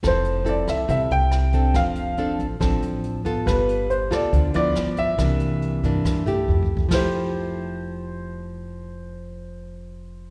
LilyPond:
<<
  \new Staff \with { instrumentName = "Grand piano" } { \time 4/4 \key f \major \tempo 4 = 140 c''4 d''8 e''8 e''8 g''4. | f''4. r2 r8 | b'4 c''8 d''4 d''4 e''8~ | e''2.~ e''8 r8 |
c''1~ | c''1 | }
  \new Staff \with { instrumentName = "Nylon-string guitar" } { \time 4/4 \key f \major << { <c' e' a'>4 <c' e' a'>4 <c' e' a'>4 r8 <c' d' a'>8~ | <c' d' a'>4 <c' d' a'>8 r8 <c' d' a'>4. <b f' a'>8~ | <b f' a'>4 r8 <b f' a'>4 <f b e'>4. | <e bes d'>4. <e bes d'>4 <a e' g'>4. |
<f a e' g'>1~ | <f a e' g'>1 | } \\ { f2 c2 | f2 f2 | g2 d4 r4 | c2 g,4 r4 |
r1 | r1 | } >> }
  \new Staff \with { instrumentName = "Upright bass" } { \clef bass \time 4/4 \key f \major f,,4. c,8 c,8 c,4. | f,,4. a,,8 a,,8 a,,4. | g,,4. d,8 d,8 d,8 g,,4 | c,4. g,8 g,8 c,8 f,4 |
f,,1~ | f,,1 | }
  \new DrumStaff \with { instrumentName = "Drums" } \drummode { \time 4/4 <hh bd ss>8 hh8 hh8 <hh bd ss>8 <hh bd>8 hh8 <hh ss>8 <hh bd>8 | <hh bd ss>8 hh8 hh8 <hh bd>8 <hh bd ss>8 hh8 hh8 <hh bd>8 | <hh bd ss>8 hh8 hh8 <hh bd ss>8 <hh bd>8 hh8 <hh ss>8 <hh bd>8 | <hh bd ss>8 hh8 hh8 <hh bd>8 <hh bd ss>8 hh8 \tuplet 3/2 { bd8 bd8 bd8 } |
<hho bd sn>4 r4 r4 r4 | r4 r4 r4 r4 | }
>>